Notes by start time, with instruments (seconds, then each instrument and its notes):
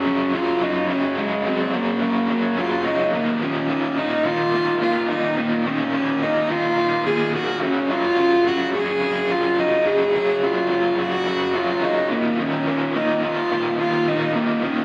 Already playing: cello C#4
0.06 overdriven electric guitar F#2 C#3 F#3
0.34 overdriven electric guitar F#2 C#3 F#3, cello F4
0.61 overdriven electric guitar F#2 C#3 F#3, cello D#4
0.89 overdriven electric guitar F#2 C#3 F#3, cello C#4
1.18 overdriven electric guitar F#2 C#3 F#3, cello G#3
1.45 overdriven electric guitar F#2 C#3 F#3, cello C4
1.73 overdriven electric guitar F#2 C#3 F#3, cello A#3
2.01 overdriven electric guitar F#2 C#3 F#3
2.29 overdriven electric guitar F#2 C#3 F#3
2.57 overdriven electric guitar F#2 C#3 F#3, cello F4
2.85 overdriven electric guitar F#2 C#3 F#3, cello D#4
3.13 overdriven electric guitar D#2 A#2 D#3, cello A#3
3.41 overdriven electric guitar D#2 A#2 D#3, cello C#4
3.69 overdriven electric guitar D#2 A#2 D#3
3.97 overdriven electric guitar D#2 A#2 D#3, cello D#4
4.25 overdriven electric guitar D#2 A#2 D#3, cello F4
4.54 overdriven electric guitar D#2 A#2 D#3
4.82 overdriven electric guitar D#2 A#2 D#3, cello F4
5.10 overdriven electric guitar D#2 A#2 D#3, cello D#4
5.38 overdriven electric guitar D#2 A#2 D#3, cello A#3
5.65 overdriven electric guitar D#2 A#2 D#3, cello C#4
5.93 overdriven electric guitar D#2 A#2 D#3
6.22 overdriven electric guitar D#2 A#2 D#3, cello D#4
6.50 overdriven electric guitar D#2 A#2 D#3, cello F4
6.78 overdriven electric guitar D#2 A#2 D#3
7.06 overdriven electric guitar D#2 A#2 D#3, cello G#4
7.34 overdriven electric guitar D#2 A#2 D#3, cello F#4
7.62 overdriven electric guitar F#2 C#3 F#3, cello C#4
7.90 overdriven electric guitar F#2 C#3 F#3, cello F4
8.19 overdriven electric guitar F#2 C#3 F#3
8.46 overdriven electric guitar F#2 C#3 F#3, cello F#4
8.75 overdriven electric guitar F#2 C#3 F#3, cello G#4
9.02 overdriven electric guitar F#2 C#3 F#3
9.30 overdriven electric guitar F#2 C#3 F#3, cello F4
9.59 overdriven electric guitar F#2 C#3 F#3, cello D#4
9.86 overdriven electric guitar F#2 C#3 F#3, cello G#4
10.15 overdriven electric guitar F#2 C#3 F#3
10.43 overdriven electric guitar F#2 C#3 F#3, cello F4
10.70 overdriven electric guitar F#2 C#3 F#3
10.98 overdriven electric guitar F#2 C#3 F#3, cello F#4
11.26 overdriven electric guitar F#2 C#3 F#3
11.55 overdriven electric guitar F#2 C#3 F#3, cello F4
11.82 overdriven electric guitar F#2 C#3 F#3, cello D#4
12.11 overdriven electric guitar D#2 A#2 D#3, cello A#3
12.39 overdriven electric guitar D#2 A#2 D#3, cello C#4
12.67 overdriven electric guitar D#2 A#2 D#3
12.95 overdriven electric guitar D#2 A#2 D#3, cello D#4
13.24 overdriven electric guitar D#2 A#2 D#3, cello F4
13.51 overdriven electric guitar D#2 A#2 D#3
13.80 overdriven electric guitar D#2 A#2 D#3, cello F4
14.07 overdriven electric guitar D#2 A#2 D#3, cello D#4
14.36 overdriven electric guitar D#2 A#2 D#3, cello A#3
14.63 overdriven electric guitar D#2 A#2 D#3, cello C#4